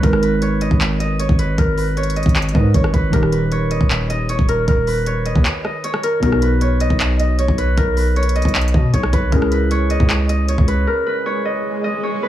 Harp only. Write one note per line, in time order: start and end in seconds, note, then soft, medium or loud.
0.00 0.29 A#4 medium
0.00 0.42 C#5 medium
0.00 0.61 D#5 medium
0.23 1.39 B4 medium
0.42 1.19 C#5 medium
0.61 1.00 D#5 medium
1.00 2.16 D#5 medium
1.20 1.97 C#5 medium
1.39 1.64 B4 medium
1.58 1.84 A#4 loud
1.78 2.93 B4 medium
1.97 2.74 C#5 loud
2.16 2.55 D#5 medium
2.55 3.71 D#5 medium
2.74 3.51 C#5 medium
2.94 3.19 B4 medium
3.13 3.38 A#4 medium
3.32 4.55 B4 medium
3.52 4.29 C#5 medium
3.71 4.10 D#5 medium
4.10 5.26 D#5 medium
4.29 5.06 C#5 medium
4.49 4.68 A#4 medium
4.68 4.93 A#4 medium
4.87 6.09 B4 medium
5.07 5.84 C#5 medium
5.26 5.64 D#5 medium
5.65 6.80 D#5 medium
5.84 6.61 C#5 medium
6.03 6.22 A#4 medium
6.23 6.48 A#4 medium
6.42 7.58 B4 medium
6.61 7.38 C#5 medium
6.81 7.19 D#5 medium
7.20 8.35 D#5 medium
7.39 8.16 C#5 medium
7.58 7.84 B4 medium
7.78 8.03 A#4 medium
7.97 9.13 B4 medium
8.16 8.93 C#5 medium
8.36 8.74 D#5 medium
8.74 9.90 D#5 medium
8.94 9.71 C#5 medium
9.13 9.38 B4 medium
9.32 9.58 A#4 medium
9.52 10.68 B4 medium
9.71 10.48 C#5 loud
9.91 10.29 D#5 medium
10.29 11.45 D#5 medium
10.49 11.26 C#5 medium
10.68 10.93 B4 medium
10.87 11.13 A#4 medium
11.07 12.22 B4 medium
11.26 12.03 C#5 medium
11.45 11.84 D#5 medium
11.84 12.28 D#5 medium
12.03 12.28 C#5 medium
12.23 12.28 B4 medium